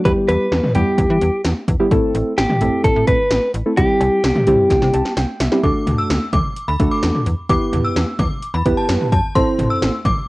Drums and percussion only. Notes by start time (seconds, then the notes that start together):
0.05 kick, closed hi-hat
0.29 closed hi-hat
0.52 snare, closed hi-hat
0.64 mid tom
0.75 closed hi-hat
0.98 kick, closed hi-hat
1.21 closed hi-hat
1.45 snare, closed hi-hat
1.68 kick, closed hi-hat
1.91 kick, closed hi-hat
2.15 closed hi-hat
2.38 snare, closed hi-hat
2.50 mid tom
2.61 closed hi-hat
2.84 kick, closed hi-hat
3.07 kick, closed hi-hat
3.31 snare, closed hi-hat
3.54 closed hi-hat
3.77 kick, closed hi-hat
4.01 closed hi-hat, cowbell
4.24 snare, closed hi-hat
4.36 mid tom
4.47 closed hi-hat, mid tom
4.70 kick, snare, closed hi-hat
4.82 snare
4.94 closed hi-hat
5.05 snare
5.17 snare, closed hi-hat
5.40 snare, closed hi-hat
5.52 snare
5.63 kick, closed hi-hat
5.87 closed hi-hat, mid tom
6.10 snare, closed hi-hat
6.33 kick, closed hi-hat, mid tom
6.56 closed hi-hat
6.80 kick, closed hi-hat
7.03 snare, closed hi-hat
7.15 mid tom
7.26 closed hi-hat
7.49 kick, closed hi-hat
7.73 closed hi-hat, mid tom
7.96 snare, closed hi-hat
8.19 kick, closed hi-hat, mid tom
8.42 closed hi-hat
8.66 kick, closed hi-hat
8.89 snare, closed hi-hat
9.01 mid tom
9.12 kick, closed hi-hat
9.35 kick, closed hi-hat
9.59 closed hi-hat, mid tom
9.82 snare, closed hi-hat
10.05 kick, closed hi-hat, mid tom